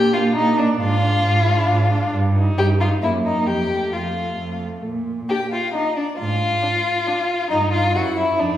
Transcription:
Already playing: cello A#2, viola D4, violin G4
0.13 viola D4, violin F4 F5
0.36 cello A#2, violin D#4 D#5
0.58 viola D4, violin D4 D5
0.80 cello G#2, viola D4, violin F4 F5
1.02 viola D4
1.25 cello G#2
1.47 viola D4
1.70 cello G#2
1.92 viola D4
2.14 cello G2
2.36 viola D#4
2.58 cello G2, violin G4 G5
2.80 viola D#4, violin F4 F5
3.02 cello F#2, viola A#3, violin E4 E5
3.25 viola A#3, violin D#4 D#5
3.47 cello F2, violin G4 G5
3.71 viola A3
3.93 cello F2, violin F4 F5
4.16 viola A3
4.39 cello F2
4.62 viola A3
4.85 cello A#2
5.29 viola D4, violin G4 G5
5.51 violin F4 F5
5.73 viola D4, violin D#4 D#5
5.96 violin D4 D5
6.18 cello G#2, violin F4 F5
6.63 viola D4
7.07 viola D4
7.50 cello G2, viola D#4, violin D#4 D#5
7.72 violin F4 F5
7.95 cello F#2, viola E4, violin F#4 F#5
8.17 violin E4 E5
8.39 cello F2, violin D4 D5, viola D#4

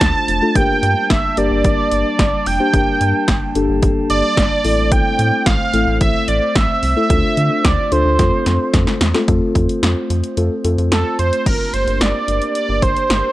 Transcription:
Already playing: glass harmonica A3 D4 F4 C5, analog synth lead A5
0.01 analog synth bass D2, kick, snare, closed hi-hat
0.28 analog synth bass F1, closed hi-hat
0.42 synth keys A3 D4 F4 A4
0.55 analog synth bass G1, glass harmonica G3 A#3 A5, synth keys A#3 D4 G4 A#4, analog synth lead G5, kick, closed hi-hat
0.83 analog synth bass G2, closed hi-hat
1.10 analog synth bass G1, analog synth lead E5, kick, snare, closed hi-hat
1.37 analog synth bass G1, synth keys A#3 D4 G4 A#4, analog synth lead D5, closed hi-hat
1.51 analog synth bass G1
1.64 analog synth bass G1, kick, closed hi-hat
1.92 analog synth bass G1, closed hi-hat
2.19 analog synth bass G1, kick, snare, closed hi-hat
2.46 analog synth bass F1, analog synth lead G5, open hi-hat
2.60 synth keys A#3 D4 G4 C5
2.74 analog synth bass G1, synth keys A#3 D4 G4 A#4, kick, closed hi-hat
3.01 analog synth bass G2, closed hi-hat
3.28 analog synth bass G1, kick, snare, closed hi-hat
3.55 analog synth bass G1, synth keys A#3 D4 G4 A4, closed hi-hat
3.69 analog synth bass G1
3.83 analog synth bass G1, kick, closed hi-hat
4.10 analog synth bass G1, analog synth lead D5, closed hi-hat
4.37 analog synth bass G1, kick, snare, closed hi-hat
4.64 analog synth bass A1, glass harmonica A3 C4 C5, synth keys A3 C4 E4 A4, open hi-hat
4.92 analog synth lead G5, kick, closed hi-hat
5.19 analog synth bass A2, closed hi-hat
5.46 analog synth bass A1, analog synth lead F5, kick, snare, closed hi-hat
5.73 analog synth bass A1, synth keys A3 C4 E4 A4, closed hi-hat
5.87 analog synth bass A1
6.01 analog synth bass A1, analog synth lead E5, kick, closed hi-hat
6.28 analog synth bass A1, analog synth lead D5, closed hi-hat
6.56 analog synth bass A1, analog synth lead E5, kick, snare, closed hi-hat
6.83 analog synth bass C2, open hi-hat
6.96 synth keys A3 C4 E4 A4, analog synth lead E5
7.10 analog synth bass D2, synth keys A3 D4 F4 A4, glass harmonica D4 F4, kick, closed hi-hat
7.37 analog synth bass D3, closed hi-hat
7.65 analog synth bass D2, analog synth lead D5, kick, snare, closed hi-hat
7.92 analog synth bass D2, synth keys A3 D4 F4 A4, analog synth lead C5, closed hi-hat
8.05 analog synth bass D2
8.19 analog synth bass F2, synth keys A3 C4 F4 A4, glass harmonica C4, kick, snare, closed hi-hat
8.46 analog synth bass F2, snare, closed hi-hat
8.74 analog synth bass F2, kick, snare, closed hi-hat
8.87 snare
9.01 analog synth bass E2, snare, closed hi-hat
9.14 synth keys A3 C4 F4 A4, snare
9.28 analog synth bass F2, glass harmonica A3 C4 F4 C5, synth keys A3 C4 F4 A4, kick, closed hi-hat
9.55 analog synth bass F2, kick, closed hi-hat
9.69 closed hi-hat
9.83 analog synth bass F2, snare, closed hi-hat
10.10 analog synth bass F2, closed hi-hat
10.24 closed hi-hat
10.37 analog synth bass F2, synth keys A3 C4 F4 A4, closed hi-hat
10.64 analog synth bass F2, synth keys A3 C4 F4 A4, closed hi-hat
10.78 analog synth bass F2, closed hi-hat
10.92 analog synth bass F2, analog synth lead A4, snare, closed hi-hat
11.19 analog synth bass F2, analog synth lead C5, closed hi-hat
11.33 closed hi-hat
11.46 analog synth bass G1, glass harmonica A#3 D4 G4 A#4, analog synth lead A#4, kick, closed hi-hat, crash
11.73 analog synth bass G1, analog synth lead C5, closed hi-hat
11.87 analog synth bass G1, closed hi-hat
12.01 analog synth bass G1, analog synth lead D5, snare, closed hi-hat
12.28 analog synth bass G1, closed hi-hat
12.42 closed hi-hat
12.55 analog synth lead D5, closed hi-hat
12.69 analog synth bass G1
12.82 analog synth bass G1, analog synth lead C5, kick, closed hi-hat
12.97 closed hi-hat
13.10 analog synth bass G1, snare, closed hi-hat

